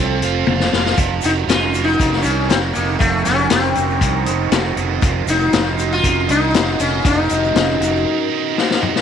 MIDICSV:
0, 0, Header, 1, 6, 480
1, 0, Start_track
1, 0, Tempo, 505902
1, 931, Time_signature, 4, 2, 24, 8
1, 8552, End_track
2, 0, Start_track
2, 0, Title_t, "String machine"
2, 0, Program_c, 0, 50
2, 0, Note_on_c, 0, 65, 74
2, 0, Note_on_c, 0, 69, 63
2, 0, Note_on_c, 0, 72, 63
2, 0, Note_on_c, 0, 81, 78
2, 891, Note_off_c, 0, 81, 0
2, 893, Note_off_c, 0, 69, 0
2, 894, Note_off_c, 0, 72, 0
2, 900, Note_off_c, 0, 65, 0
2, 924, Note_on_c, 0, 70, 69
2, 934, Note_on_c, 0, 63, 68
2, 936, Note_on_c, 0, 85, 78
2, 941, Note_on_c, 0, 75, 64
2, 4737, Note_off_c, 0, 85, 0
2, 4757, Note_on_c, 0, 84, 82
2, 8552, Note_off_c, 0, 63, 0
2, 8552, Note_off_c, 0, 70, 0
2, 8552, Note_off_c, 0, 75, 0
2, 8552, Note_off_c, 0, 84, 0
2, 8552, End_track
3, 0, Start_track
3, 0, Title_t, "Distorted electric guitar"
3, 0, Program_c, 1, 30
3, 0, Note_on_c, 1, 53, 67
3, 0, Note_on_c, 1, 60, 63
3, 0, Note_on_c, 1, 65, 59
3, 0, Note_on_c, 1, 69, 56
3, 215, Note_off_c, 1, 53, 0
3, 230, Note_on_c, 1, 77, 61
3, 460, Note_off_c, 1, 65, 0
3, 472, Note_on_c, 1, 65, 52
3, 680, Note_off_c, 1, 77, 0
3, 691, Note_off_c, 1, 60, 0
3, 691, Note_on_c, 1, 77, 67
3, 925, Note_on_c, 1, 53, 68
3, 931, Note_off_c, 1, 77, 0
3, 940, Note_off_c, 1, 69, 0
3, 941, Note_off_c, 1, 65, 0
3, 1164, Note_on_c, 1, 66, 59
3, 1402, Note_on_c, 1, 61, 63
3, 1634, Note_off_c, 1, 66, 0
3, 1638, Note_on_c, 1, 66, 62
3, 1882, Note_on_c, 1, 70, 58
3, 2126, Note_on_c, 1, 75, 62
3, 2129, Note_off_c, 1, 53, 0
3, 2382, Note_off_c, 1, 66, 0
3, 2385, Note_on_c, 1, 66, 59
3, 2613, Note_off_c, 1, 75, 0
3, 2617, Note_on_c, 1, 75, 71
3, 2645, Note_off_c, 1, 61, 0
3, 2848, Note_on_c, 1, 53, 66
3, 3085, Note_off_c, 1, 66, 0
3, 3089, Note_on_c, 1, 66, 60
3, 3333, Note_on_c, 1, 61, 61
3, 3570, Note_off_c, 1, 66, 0
3, 3573, Note_on_c, 1, 66, 64
3, 3797, Note_off_c, 1, 70, 0
3, 3801, Note_on_c, 1, 70, 62
3, 4038, Note_off_c, 1, 75, 0
3, 4041, Note_on_c, 1, 75, 63
3, 4050, Note_off_c, 1, 53, 0
3, 4291, Note_off_c, 1, 66, 0
3, 4294, Note_on_c, 1, 66, 57
3, 4529, Note_off_c, 1, 75, 0
3, 4533, Note_on_c, 1, 75, 76
3, 4561, Note_off_c, 1, 61, 0
3, 4779, Note_on_c, 1, 53, 71
3, 5011, Note_off_c, 1, 66, 0
3, 5015, Note_on_c, 1, 66, 62
3, 5251, Note_on_c, 1, 61, 67
3, 5480, Note_off_c, 1, 66, 0
3, 5491, Note_on_c, 1, 66, 62
3, 5722, Note_off_c, 1, 70, 0
3, 5726, Note_on_c, 1, 70, 64
3, 5959, Note_off_c, 1, 75, 0
3, 5963, Note_on_c, 1, 75, 61
3, 5975, Note_off_c, 1, 53, 0
3, 6195, Note_off_c, 1, 66, 0
3, 6206, Note_on_c, 1, 66, 58
3, 6440, Note_off_c, 1, 75, 0
3, 6449, Note_off_c, 1, 61, 0
3, 6451, Note_on_c, 1, 75, 68
3, 6691, Note_on_c, 1, 53, 64
3, 6907, Note_off_c, 1, 66, 0
3, 6919, Note_on_c, 1, 66, 57
3, 6926, Note_off_c, 1, 70, 0
3, 7157, Note_on_c, 1, 61, 60
3, 7389, Note_off_c, 1, 66, 0
3, 7400, Note_on_c, 1, 66, 66
3, 7636, Note_on_c, 1, 70, 61
3, 7648, Note_off_c, 1, 75, 0
3, 7877, Note_on_c, 1, 75, 57
3, 7888, Note_off_c, 1, 53, 0
3, 8098, Note_off_c, 1, 66, 0
3, 8109, Note_on_c, 1, 66, 55
3, 8351, Note_off_c, 1, 75, 0
3, 8360, Note_off_c, 1, 61, 0
3, 8362, Note_on_c, 1, 75, 66
3, 8552, Note_off_c, 1, 66, 0
3, 8552, Note_off_c, 1, 70, 0
3, 8552, Note_off_c, 1, 75, 0
3, 8552, End_track
4, 0, Start_track
4, 0, Title_t, "Sitar"
4, 0, Program_c, 2, 104
4, 0, Note_on_c, 2, 60, 73
4, 645, Note_off_c, 2, 60, 0
4, 1188, Note_on_c, 2, 63, 87
4, 1250, Note_off_c, 2, 63, 0
4, 1409, Note_on_c, 2, 65, 88
4, 1748, Note_on_c, 2, 63, 89
4, 1781, Note_off_c, 2, 65, 0
4, 2094, Note_off_c, 2, 63, 0
4, 2106, Note_on_c, 2, 61, 82
4, 2361, Note_off_c, 2, 61, 0
4, 2365, Note_on_c, 2, 60, 79
4, 2431, Note_off_c, 2, 60, 0
4, 2594, Note_on_c, 2, 58, 77
4, 2832, Note_off_c, 2, 58, 0
4, 2836, Note_on_c, 2, 57, 81
4, 3079, Note_off_c, 2, 57, 0
4, 3083, Note_on_c, 2, 61, 80
4, 3312, Note_off_c, 2, 61, 0
4, 3316, Note_on_c, 2, 60, 68
4, 4113, Note_off_c, 2, 60, 0
4, 4113, Note_on_c, 2, 58, 68
4, 4486, Note_off_c, 2, 58, 0
4, 5025, Note_on_c, 2, 63, 89
4, 5622, Note_on_c, 2, 65, 94
4, 5636, Note_off_c, 2, 63, 0
4, 5979, Note_on_c, 2, 63, 86
4, 5987, Note_off_c, 2, 65, 0
4, 6451, Note_off_c, 2, 63, 0
4, 6455, Note_on_c, 2, 61, 76
4, 6695, Note_off_c, 2, 61, 0
4, 6699, Note_on_c, 2, 63, 75
4, 8093, Note_off_c, 2, 63, 0
4, 8552, End_track
5, 0, Start_track
5, 0, Title_t, "Fingered electric bass"
5, 0, Program_c, 3, 33
5, 0, Note_on_c, 3, 36, 82
5, 188, Note_off_c, 3, 36, 0
5, 203, Note_on_c, 3, 29, 76
5, 431, Note_off_c, 3, 29, 0
5, 447, Note_on_c, 3, 29, 80
5, 673, Note_off_c, 3, 29, 0
5, 694, Note_on_c, 3, 29, 72
5, 917, Note_off_c, 3, 29, 0
5, 930, Note_on_c, 3, 29, 77
5, 1155, Note_off_c, 3, 29, 0
5, 1174, Note_on_c, 3, 29, 73
5, 1390, Note_off_c, 3, 29, 0
5, 1396, Note_on_c, 3, 29, 78
5, 1852, Note_off_c, 3, 29, 0
5, 1892, Note_on_c, 3, 29, 76
5, 2117, Note_off_c, 3, 29, 0
5, 2133, Note_on_c, 3, 36, 83
5, 2357, Note_off_c, 3, 36, 0
5, 2382, Note_on_c, 3, 29, 79
5, 2602, Note_off_c, 3, 29, 0
5, 2623, Note_on_c, 3, 29, 70
5, 2842, Note_off_c, 3, 29, 0
5, 2849, Note_on_c, 3, 29, 84
5, 3075, Note_off_c, 3, 29, 0
5, 3106, Note_on_c, 3, 29, 68
5, 3324, Note_off_c, 3, 29, 0
5, 3329, Note_on_c, 3, 29, 75
5, 3555, Note_off_c, 3, 29, 0
5, 3577, Note_on_c, 3, 29, 80
5, 3799, Note_off_c, 3, 29, 0
5, 3808, Note_on_c, 3, 36, 83
5, 4034, Note_off_c, 3, 36, 0
5, 4050, Note_on_c, 3, 29, 83
5, 4275, Note_off_c, 3, 29, 0
5, 4282, Note_on_c, 3, 29, 82
5, 4511, Note_off_c, 3, 29, 0
5, 4516, Note_on_c, 3, 29, 78
5, 4748, Note_off_c, 3, 29, 0
5, 4766, Note_on_c, 3, 29, 85
5, 4983, Note_off_c, 3, 29, 0
5, 4989, Note_on_c, 3, 29, 75
5, 5224, Note_off_c, 3, 29, 0
5, 5247, Note_on_c, 3, 29, 74
5, 5697, Note_off_c, 3, 29, 0
5, 5732, Note_on_c, 3, 29, 76
5, 5955, Note_off_c, 3, 29, 0
5, 5972, Note_on_c, 3, 36, 86
5, 6196, Note_off_c, 3, 36, 0
5, 6215, Note_on_c, 3, 29, 83
5, 6437, Note_off_c, 3, 29, 0
5, 6448, Note_on_c, 3, 29, 79
5, 6673, Note_off_c, 3, 29, 0
5, 6686, Note_on_c, 3, 29, 85
5, 6911, Note_off_c, 3, 29, 0
5, 6934, Note_on_c, 3, 29, 79
5, 7155, Note_off_c, 3, 29, 0
5, 7164, Note_on_c, 3, 29, 75
5, 7390, Note_off_c, 3, 29, 0
5, 7402, Note_on_c, 3, 29, 77
5, 7629, Note_off_c, 3, 29, 0
5, 8552, End_track
6, 0, Start_track
6, 0, Title_t, "Drums"
6, 209, Note_on_c, 9, 42, 51
6, 304, Note_off_c, 9, 42, 0
6, 443, Note_on_c, 9, 48, 54
6, 538, Note_off_c, 9, 48, 0
6, 570, Note_on_c, 9, 38, 57
6, 665, Note_off_c, 9, 38, 0
6, 693, Note_on_c, 9, 38, 75
6, 788, Note_off_c, 9, 38, 0
6, 815, Note_on_c, 9, 38, 59
6, 910, Note_off_c, 9, 38, 0
6, 919, Note_on_c, 9, 82, 49
6, 927, Note_on_c, 9, 42, 76
6, 928, Note_on_c, 9, 36, 98
6, 1014, Note_off_c, 9, 82, 0
6, 1022, Note_off_c, 9, 42, 0
6, 1023, Note_off_c, 9, 36, 0
6, 1152, Note_on_c, 9, 82, 86
6, 1175, Note_on_c, 9, 42, 63
6, 1247, Note_off_c, 9, 82, 0
6, 1270, Note_off_c, 9, 42, 0
6, 1281, Note_on_c, 9, 82, 23
6, 1376, Note_off_c, 9, 82, 0
6, 1416, Note_on_c, 9, 42, 77
6, 1417, Note_on_c, 9, 82, 50
6, 1422, Note_on_c, 9, 38, 105
6, 1511, Note_off_c, 9, 42, 0
6, 1512, Note_off_c, 9, 82, 0
6, 1517, Note_off_c, 9, 38, 0
6, 1648, Note_on_c, 9, 82, 77
6, 1660, Note_on_c, 9, 42, 56
6, 1743, Note_off_c, 9, 82, 0
6, 1754, Note_off_c, 9, 42, 0
6, 1773, Note_on_c, 9, 82, 21
6, 1868, Note_off_c, 9, 82, 0
6, 1894, Note_on_c, 9, 36, 75
6, 1894, Note_on_c, 9, 82, 60
6, 1902, Note_on_c, 9, 42, 73
6, 1989, Note_off_c, 9, 36, 0
6, 1989, Note_off_c, 9, 82, 0
6, 1997, Note_off_c, 9, 42, 0
6, 2019, Note_on_c, 9, 38, 29
6, 2113, Note_on_c, 9, 82, 72
6, 2114, Note_off_c, 9, 38, 0
6, 2138, Note_on_c, 9, 42, 52
6, 2208, Note_off_c, 9, 82, 0
6, 2233, Note_off_c, 9, 42, 0
6, 2372, Note_on_c, 9, 42, 78
6, 2372, Note_on_c, 9, 82, 62
6, 2378, Note_on_c, 9, 38, 108
6, 2467, Note_off_c, 9, 42, 0
6, 2467, Note_off_c, 9, 82, 0
6, 2473, Note_off_c, 9, 38, 0
6, 2610, Note_on_c, 9, 82, 76
6, 2611, Note_on_c, 9, 42, 55
6, 2705, Note_off_c, 9, 82, 0
6, 2706, Note_off_c, 9, 42, 0
6, 2845, Note_on_c, 9, 82, 54
6, 2850, Note_on_c, 9, 36, 92
6, 2854, Note_on_c, 9, 42, 70
6, 2940, Note_off_c, 9, 82, 0
6, 2945, Note_off_c, 9, 36, 0
6, 2949, Note_off_c, 9, 42, 0
6, 3084, Note_on_c, 9, 42, 50
6, 3088, Note_on_c, 9, 82, 82
6, 3089, Note_on_c, 9, 38, 31
6, 3179, Note_off_c, 9, 42, 0
6, 3183, Note_off_c, 9, 82, 0
6, 3184, Note_off_c, 9, 38, 0
6, 3219, Note_on_c, 9, 82, 22
6, 3314, Note_off_c, 9, 82, 0
6, 3320, Note_on_c, 9, 42, 76
6, 3325, Note_on_c, 9, 38, 92
6, 3338, Note_on_c, 9, 82, 54
6, 3414, Note_off_c, 9, 42, 0
6, 3420, Note_off_c, 9, 38, 0
6, 3432, Note_off_c, 9, 82, 0
6, 3561, Note_on_c, 9, 42, 53
6, 3582, Note_on_c, 9, 82, 74
6, 3655, Note_off_c, 9, 42, 0
6, 3677, Note_off_c, 9, 82, 0
6, 3699, Note_on_c, 9, 82, 20
6, 3794, Note_off_c, 9, 82, 0
6, 3806, Note_on_c, 9, 36, 80
6, 3809, Note_on_c, 9, 42, 80
6, 3815, Note_on_c, 9, 82, 63
6, 3901, Note_off_c, 9, 36, 0
6, 3904, Note_off_c, 9, 42, 0
6, 3910, Note_off_c, 9, 82, 0
6, 4044, Note_on_c, 9, 42, 54
6, 4056, Note_on_c, 9, 82, 71
6, 4139, Note_off_c, 9, 42, 0
6, 4151, Note_off_c, 9, 82, 0
6, 4284, Note_on_c, 9, 42, 78
6, 4289, Note_on_c, 9, 82, 59
6, 4290, Note_on_c, 9, 38, 110
6, 4379, Note_off_c, 9, 42, 0
6, 4384, Note_off_c, 9, 82, 0
6, 4385, Note_off_c, 9, 38, 0
6, 4525, Note_on_c, 9, 42, 55
6, 4620, Note_off_c, 9, 42, 0
6, 4763, Note_on_c, 9, 82, 56
6, 4766, Note_on_c, 9, 36, 105
6, 4771, Note_on_c, 9, 42, 77
6, 4858, Note_off_c, 9, 82, 0
6, 4861, Note_off_c, 9, 36, 0
6, 4866, Note_off_c, 9, 42, 0
6, 5003, Note_on_c, 9, 82, 88
6, 5011, Note_on_c, 9, 42, 60
6, 5098, Note_off_c, 9, 82, 0
6, 5105, Note_off_c, 9, 42, 0
6, 5127, Note_on_c, 9, 82, 24
6, 5222, Note_off_c, 9, 82, 0
6, 5245, Note_on_c, 9, 42, 72
6, 5246, Note_on_c, 9, 82, 61
6, 5250, Note_on_c, 9, 38, 109
6, 5340, Note_off_c, 9, 42, 0
6, 5341, Note_off_c, 9, 82, 0
6, 5345, Note_off_c, 9, 38, 0
6, 5490, Note_on_c, 9, 82, 85
6, 5496, Note_on_c, 9, 42, 51
6, 5585, Note_off_c, 9, 82, 0
6, 5591, Note_off_c, 9, 42, 0
6, 5618, Note_on_c, 9, 82, 24
6, 5713, Note_off_c, 9, 82, 0
6, 5727, Note_on_c, 9, 36, 74
6, 5730, Note_on_c, 9, 42, 78
6, 5742, Note_on_c, 9, 82, 65
6, 5822, Note_off_c, 9, 36, 0
6, 5825, Note_off_c, 9, 42, 0
6, 5837, Note_off_c, 9, 82, 0
6, 5965, Note_on_c, 9, 42, 54
6, 5991, Note_on_c, 9, 82, 78
6, 6060, Note_off_c, 9, 42, 0
6, 6086, Note_off_c, 9, 82, 0
6, 6207, Note_on_c, 9, 42, 80
6, 6213, Note_on_c, 9, 38, 109
6, 6225, Note_on_c, 9, 82, 72
6, 6302, Note_off_c, 9, 42, 0
6, 6308, Note_off_c, 9, 38, 0
6, 6320, Note_off_c, 9, 82, 0
6, 6448, Note_on_c, 9, 42, 53
6, 6451, Note_on_c, 9, 82, 89
6, 6543, Note_off_c, 9, 42, 0
6, 6546, Note_off_c, 9, 82, 0
6, 6688, Note_on_c, 9, 36, 94
6, 6690, Note_on_c, 9, 42, 76
6, 6694, Note_on_c, 9, 82, 58
6, 6783, Note_off_c, 9, 36, 0
6, 6784, Note_off_c, 9, 42, 0
6, 6789, Note_off_c, 9, 82, 0
6, 6920, Note_on_c, 9, 42, 57
6, 6936, Note_on_c, 9, 82, 93
6, 7015, Note_off_c, 9, 42, 0
6, 7031, Note_off_c, 9, 82, 0
6, 7061, Note_on_c, 9, 82, 26
6, 7156, Note_off_c, 9, 82, 0
6, 7168, Note_on_c, 9, 42, 70
6, 7174, Note_on_c, 9, 38, 99
6, 7187, Note_on_c, 9, 82, 65
6, 7263, Note_off_c, 9, 42, 0
6, 7269, Note_off_c, 9, 38, 0
6, 7282, Note_off_c, 9, 82, 0
6, 7415, Note_on_c, 9, 42, 47
6, 7434, Note_on_c, 9, 82, 87
6, 7510, Note_off_c, 9, 42, 0
6, 7529, Note_off_c, 9, 82, 0
6, 7552, Note_on_c, 9, 82, 22
6, 7647, Note_off_c, 9, 82, 0
6, 8139, Note_on_c, 9, 38, 55
6, 8234, Note_off_c, 9, 38, 0
6, 8261, Note_on_c, 9, 38, 59
6, 8356, Note_off_c, 9, 38, 0
6, 8374, Note_on_c, 9, 45, 68
6, 8469, Note_off_c, 9, 45, 0
6, 8499, Note_on_c, 9, 38, 60
6, 8552, Note_off_c, 9, 38, 0
6, 8552, End_track
0, 0, End_of_file